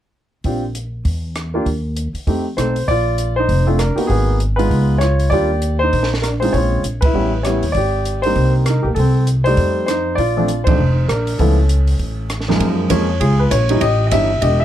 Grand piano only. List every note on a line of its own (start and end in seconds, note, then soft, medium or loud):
0.45 0.62 C4 soft
0.45 0.62 D4 soft
0.45 0.62 F4 soft
0.45 0.62 G4 soft
1.54 1.65 A#3 medium
1.54 1.66 D4 medium
1.54 1.65 F4 medium
1.54 1.65 G4 medium
2.27 2.44 A3 soft
2.27 2.44 C4 soft
2.27 2.44 D#4 soft
2.27 2.44 G4 soft
2.57 2.74 A3 soft
2.57 2.74 C4 soft
2.57 2.75 D#4 soft
2.57 2.74 A4 soft
2.57 2.89 C5 medium
2.88 3.35 F4 medium
2.88 3.38 D5 medium
3.36 3.67 D#4 medium
3.36 3.65 C5 medium
3.67 3.78 A3 medium
3.67 3.78 C4 medium
3.67 3.78 D4 soft
3.67 3.78 F4 medium
3.79 3.98 D4 medium
3.79 3.98 A#4 medium
3.96 4.38 A#3 medium
3.96 4.09 B3 soft
3.96 4.38 D#4 soft
3.96 4.38 F#4 medium
3.96 4.08 G4 medium
4.07 4.38 B3 medium
4.07 4.37 G#4 medium
4.56 4.99 G#3 medium
4.56 4.99 B3 medium
4.56 4.99 D#4 medium
4.56 4.99 F4 medium
4.56 5.01 B4 medium
4.98 5.31 C#5 medium
5.03 5.30 F4 medium
5.30 5.48 G3 soft
5.30 5.49 A#3 soft
5.30 5.49 D4 medium
5.30 5.49 F4 medium
5.30 5.78 G4 medium
5.30 5.76 D5 medium
5.79 6.08 C5 medium
5.84 6.10 D#4 medium
6.22 6.27 A#4 medium
6.27 6.32 D4 medium
6.40 6.81 G#3 soft
6.40 6.82 C4 soft
6.40 6.82 C#4 soft
6.40 6.56 F4 medium
6.40 6.53 C5 medium
6.44 6.54 D#4 medium
6.53 6.81 C#5 medium
6.58 6.84 F4 medium
7.01 7.41 B4 medium
7.05 7.14 E4 medium
7.14 7.31 G3 medium
7.14 7.31 B3 soft
7.14 7.31 C#4 soft
7.14 7.31 E4 medium
7.43 7.62 G3 soft
7.43 7.62 B3 soft
7.43 7.62 C#4 soft
7.43 7.62 E4 medium
7.43 7.75 C#5 medium
7.72 8.24 D5 medium
7.77 8.22 G4 medium
8.22 8.65 G3 medium
8.22 8.65 A#3 soft
8.22 8.65 C4 soft
8.22 8.51 C5 medium
8.26 8.65 D#4 medium
8.65 8.85 A#4 medium
8.70 8.85 D#4 medium
8.82 8.87 G4 medium
8.87 8.92 A#3 soft
8.95 9.24 A4 medium
8.99 9.26 C4 medium
9.44 9.86 G3 medium
9.44 9.86 A3 medium
9.44 9.86 D#4 medium
9.44 9.85 C5 medium
9.44 9.86 D5 medium
9.86 10.17 D#4 medium
9.86 10.15 C5 medium
10.15 10.64 F4 medium
10.15 10.67 D5 medium
10.37 10.47 F3 medium
10.37 10.48 A3 medium
10.37 10.48 C4 soft
10.37 10.48 D4 medium
10.64 10.78 F3 medium
10.64 10.78 A3 soft
10.64 11.06 D#4 medium
10.64 11.09 C5 medium
10.68 10.78 C4 soft
10.68 10.79 D4 medium
11.09 11.39 D4 soft
11.09 11.37 A#4 medium
11.39 11.56 F3 medium
11.39 11.56 A3 soft
11.39 11.56 B3 soft
11.39 12.28 C#4 soft
11.39 11.57 E4 medium
11.39 12.26 A4 medium
12.48 12.88 F#2 medium
12.48 12.88 F3 medium
12.48 12.89 G#3 medium
12.48 12.88 A#3 medium
12.48 12.89 D#4 medium
12.90 13.07 F3 medium
12.90 13.07 G#3 medium
12.90 13.07 A#3 medium
12.90 13.07 C#4 medium
12.90 13.22 C#5 medium
13.20 13.78 F4 soft
13.20 13.40 G#4 medium
13.39 13.52 B4 medium
13.51 13.82 C#5 medium
13.70 13.81 E3 medium
13.70 13.81 G3 medium
13.70 13.81 C#4 medium
13.70 13.81 D#4 medium
13.81 14.38 G4 medium
13.81 14.04 D#5 medium
14.07 14.12 D#5 medium
14.12 14.29 E3 medium
14.12 14.29 G3 soft
14.12 14.29 C#4 medium
14.12 14.29 D#4 medium
14.12 14.43 E5 medium
14.42 14.65 G4 medium
14.42 14.61 D#5 medium
14.60 14.65 E5 medium